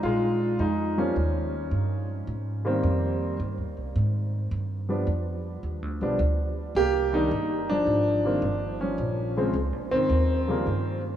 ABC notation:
X:1
M:4/4
L:1/8
Q:"Swing" 1/4=107
K:Cm
V:1 name="Grand piano"
[A,F]2 [A,E] _D4 z | z8 | z8 | [B,G] E2 [F,D]4 [F,_D]- |
[F,_D]2 z [E,C]4 z |]
V:2 name="Grand piano" clef=bass
z3 [F,G,B,] z4 | z [E,G,B,C]3 z4 | z [F,G,=B,D] z3 [F,G,B,D] z2 | z [E,G,B,D] z3 [E,G,B,C] z2 |
z [_D,F,A,C] z3 [D,F,G,B,] z2 |]
V:3 name="Upright bass" clef=bass
B,,,2 F,,2 E,,2 G,,2 | A,,2 F,,2 (3G,, E,, C,, A,,2 | G,,2 F,,2 (3E,, D,, =B,,, D,,2 | C,,2 G,,,2 A,,,2 G,,,2 |
B,,,2 (3_D,, B,,, A,,, E,,2 G,,2 |]